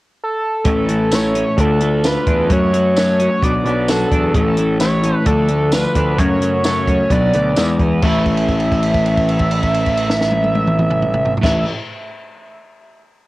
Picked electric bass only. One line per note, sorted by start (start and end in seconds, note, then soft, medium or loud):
0.65 1.42 A1 medium
1.58 2.16 D2 medium
2.27 2.50 E2 medium
2.50 3.27 F#2 medium
3.42 3.62 B1 medium
3.65 4.04 B1 medium
4.11 4.31 E2 medium
4.34 5.12 A1 medium
5.26 5.84 D2 medium
5.95 6.18 D2 medium
6.18 6.96 F#2 medium
7.10 7.30 B1 medium
7.35 7.54 D2 medium
7.57 7.77 E2 medium
7.79 7.99 E2 medium
8.03 11.33 A1 medium
11.44 11.63 A1 medium